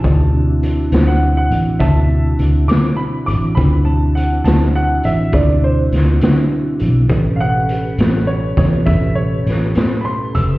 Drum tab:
HH |x-xx-xx-xx-x|x-xx-xx-xx-x|x-xx-xx-xx-x|
SD |---o-----o--|---o----oo--|---o-o--oo--|
BD |o-----o-----|o-----o-----|o----oo-----|